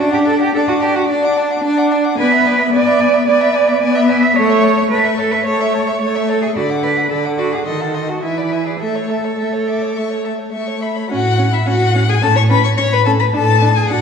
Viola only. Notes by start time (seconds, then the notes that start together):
0.00 D4
0.55 D4
1.09 D4
1.64 D4
2.19 B3
2.73 B3
3.28 B3
3.82 B3
4.37 A3
4.91 A3
5.46 A3
6.02 A3
6.56 D3
7.11 D3
7.67 D#3
8.23 E3
8.81 A3
9.39 A3
9.96 A3
10.53 A3
11.11 C#4
11.38 C#4
11.66 C#4
11.95 C#4
12.22 C#4
12.50 C#4
12.78 C#4
13.06 C#4
13.34 D4
13.62 D4
13.90 D4